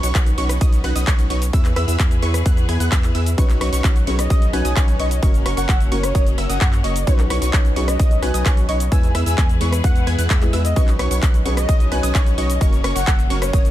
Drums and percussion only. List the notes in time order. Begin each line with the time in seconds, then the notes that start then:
0.03 closed hi-hat, cabasa
0.15 kick, clap, closed hi-hat, cabasa
0.26 closed hi-hat, cabasa
0.38 open hi-hat
0.49 cross-stick, closed hi-hat, cabasa
0.61 kick, closed hi-hat, cabasa
0.73 closed hi-hat, cabasa
0.84 cross-stick, open hi-hat
0.96 closed hi-hat, cabasa
1.07 kick, clap, closed hi-hat, cabasa
1.19 closed hi-hat, cabasa
1.30 open hi-hat
1.42 closed hi-hat, cabasa
1.53 kick, closed hi-hat, cabasa
1.65 clap, closed hi-hat, cabasa
1.76 cross-stick, open hi-hat
1.88 open hi-hat, cabasa
1.99 kick, clap, closed hi-hat, cabasa
2.11 closed hi-hat, cabasa
2.23 open hi-hat
2.34 cross-stick, closed hi-hat, cabasa
2.46 kick, closed hi-hat, cabasa
2.57 closed hi-hat, cabasa
2.69 cross-stick, open hi-hat
2.80 closed hi-hat, cabasa
2.92 kick, clap, closed hi-hat, cabasa
3.03 clap, closed hi-hat, cabasa
3.15 open hi-hat
3.26 closed hi-hat, cabasa
3.38 kick, closed hi-hat, cabasa
3.50 clap, closed hi-hat, cabasa
3.61 cross-stick, open hi-hat
3.73 closed hi-hat, cabasa
3.84 kick, clap, closed hi-hat, cabasa
3.96 closed hi-hat, cabasa
4.07 open hi-hat
4.19 cross-stick, closed hi-hat, cabasa
4.30 kick, closed hi-hat, cabasa
4.42 closed hi-hat, cabasa
4.53 cross-stick, open hi-hat
4.65 closed hi-hat, cabasa
4.76 kick, clap, closed hi-hat, cabasa
4.88 closed hi-hat, cabasa
5.00 open hi-hat
5.11 closed hi-hat, cabasa
5.23 kick, closed hi-hat, cabasa
5.34 closed hi-hat, cabasa
5.46 cross-stick, open hi-hat
5.57 closed hi-hat, cabasa
5.69 kick, clap, closed hi-hat, cabasa
5.80 closed hi-hat, cabasa
5.92 open hi-hat
6.03 cross-stick, closed hi-hat, cabasa
6.15 kick, closed hi-hat, cabasa
6.26 closed hi-hat, cabasa
6.38 cross-stick, open hi-hat
6.50 closed hi-hat, cabasa
6.61 kick, clap, closed hi-hat, cabasa
6.73 clap, closed hi-hat, cabasa
6.84 open hi-hat
6.96 closed hi-hat, cabasa
7.07 kick, closed hi-hat, cabasa
7.19 clap, closed hi-hat, cabasa
7.30 cross-stick, open hi-hat
7.42 closed hi-hat, cabasa
7.53 kick, clap, closed hi-hat, cabasa
7.65 closed hi-hat, cabasa
7.76 open hi-hat
7.88 cross-stick, closed hi-hat, cabasa
7.99 kick, closed hi-hat, cabasa
8.11 closed hi-hat, cabasa
8.23 cross-stick, open hi-hat
8.34 closed hi-hat, cabasa
8.46 kick, clap, closed hi-hat, cabasa
8.57 closed hi-hat, cabasa
8.69 open hi-hat
8.80 closed hi-hat, cabasa
8.92 kick, closed hi-hat, cabasa
9.03 closed hi-hat, cabasa
9.15 cross-stick, open hi-hat
9.26 open hi-hat, cabasa
9.38 kick, clap, closed hi-hat, cabasa
9.49 closed hi-hat, cabasa
9.61 open hi-hat
9.72 cross-stick, closed hi-hat, cabasa
9.84 kick, closed hi-hat, cabasa
9.96 closed hi-hat, cabasa
10.07 cross-stick, open hi-hat
10.19 closed hi-hat, cabasa
10.30 kick, clap, closed hi-hat, cabasa
10.42 clap, closed hi-hat, cabasa
10.53 open hi-hat
10.65 closed hi-hat, cabasa
10.76 kick, closed hi-hat, cabasa
10.88 clap, closed hi-hat, cabasa
10.99 cross-stick, open hi-hat
11.11 closed hi-hat, cabasa
11.23 kick, clap, closed hi-hat, cabasa
11.34 closed hi-hat, cabasa
11.46 open hi-hat
11.57 cross-stick, closed hi-hat, cabasa
11.69 kick, closed hi-hat, cabasa
11.80 closed hi-hat, cabasa
11.92 cross-stick, open hi-hat
12.03 closed hi-hat, cabasa
12.15 kick, clap, closed hi-hat, cabasa
12.26 closed hi-hat, cabasa
12.38 open hi-hat
12.50 closed hi-hat, cabasa
12.61 kick, closed hi-hat, cabasa
12.73 closed hi-hat, cabasa
12.84 cross-stick, open hi-hat
12.96 closed hi-hat, cabasa
13.07 kick, clap, closed hi-hat, cabasa
13.19 closed hi-hat, cabasa
13.30 open hi-hat
13.42 cross-stick, closed hi-hat, cabasa
13.53 kick, closed hi-hat, cabasa
13.65 closed hi-hat, cabasa